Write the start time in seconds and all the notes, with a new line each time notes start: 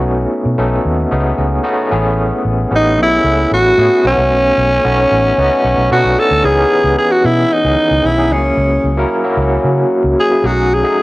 Already playing: A3 B3 C#4 D#4 F#4
0.06 B1
0.45 B2
0.58 B1 A3 B3 C#4 D#4 A4
0.85 D#2
1.11 C#2 A3 B3 C#4 D#4 G#4
1.38 C#2 D#5
1.63 A3 B3 C#4 D#4 F#4 F#5
1.91 A1 A3 B3 C#4 E4 G#4 G#5
2.45 A1
2.71 A1 A3 B3 C#4 E4 G4
2.76 D#4 G#4
2.98 B1
3.03 E4
3.24 C#2 A3 B3 C#4 E4 B4
3.51 A1 F#4
3.78 A2 A3 B3 C#4 E4 G#4
4.04 B1 A3 B3 C#4 D#4 E4
4.12 F#4
4.18 C2
4.31 B1
4.58 B1
4.84 B1 A3 B3 C#4 D#4 F#4
5.11 A1
5.38 C#2 A3 B3 C#4 D#4 F#4
5.64 B1 C#6
5.78 B1
5.91 B2 A3 B3 C#4 D4 F#4 A5
5.98 D#4
6.04 B1
6.18 A4 F#5
6.31 D2
6.44 C#2 E3 B3 C#4 D#4 G#4
6.58 E3 B3 C#4 D#4 G4
6.65 G#4
6.84 C#2
6.98 G#4
7.11 F#4
7.24 B2 E4
7.53 D#4
7.64 C#2 D#3 B3 C#4 D#4 G#4
7.71 E3
7.91 C#2
8.04 B1 E4
8.17 E3 B3 C#4 D#4 G#4
8.31 C#2 F#3 A3 C#4 E4 G#4
8.37 A#3
8.57 C#2
8.84 C#2
8.97 F#3 A#3 C#4 E4 A#4
9.24 F#3 A#3 C#4 E4 F#4
9.37 C#2
9.64 C#3
10.04 C#2
10.20 G#4
10.30 F#3 A#3 C#4 E4 G#4
10.43 B1 F#3 A3 C#4 D#4 F#4 G#4
10.74 G#4
10.83 F#3 A3 C#4 D#4 G#4